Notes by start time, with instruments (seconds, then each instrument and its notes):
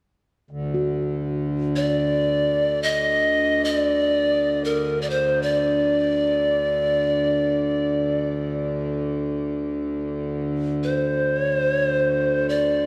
0.51 harmonium D2
0.74 handpan F#4
1.76 pan flute D5
2.83 pan flute D#5
3.65 pan flute D#5
3.76 pan flute D5
4.65 pan flute A#4
5.02 pan flute D5
5.10 pan flute C5
5.42 pan flute D5
10.83 pan flute C5
11.40 pan flute C#5
11.55 pan flute C5
11.72 pan flute C#5
11.87 pan flute C5
12.49 pan flute D5